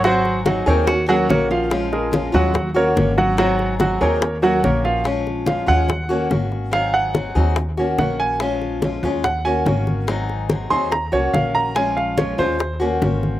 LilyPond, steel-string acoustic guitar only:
\new Staff \with { instrumentName = "Steel-string acoustic guitar" } { \time 4/4 \key ees \dorian \tempo 4 = 143 <ees ges c' ees' aes'>4 <ges c' ees' aes'>8 <ges c' ees' aes'>8 r8 <bes des' ges'>8 <ees bes des' ges'>4 | <f aes des' f'>4 <f aes des' f'>8 <aes des' f'>8 r8 <bes des' ges'>8 <ees bes des' ges'>4 | <ees ges c' ees' aes'>4 <ges c' ees' aes'>8 <ges c' ees' aes'>8 r8 <bes des' ges'>8 <ees bes des' ges'>4 | <f aes des' f'>4 <f aes des' f'>8 <aes des' f'>8 r8 <bes des' ges'>8 <ees bes des' ges'>4 |
<ees ges c' ees' aes'>4 <ges c' ees' aes'>8 <ges c' ees' aes'>8 r8 <bes des' ges'>8 <ees bes des' ges'>4 | <f aes des' f'>4 <f aes des' f'>8 <aes des' f'>8 r8 <bes des' ges'>8 <ees bes des' ges'>4 | <ees ges c' ees' aes'>4 <ges c' ees' aes'>8 <ges c' ees' aes'>8 r8 <bes des' ges'>8 <ees bes des' ges'>4 | <f aes des' f'>4 <f aes des' f'>8 <aes des' f'>8 r8 <bes des' ges'>8 <ees bes des' ges'>4 | }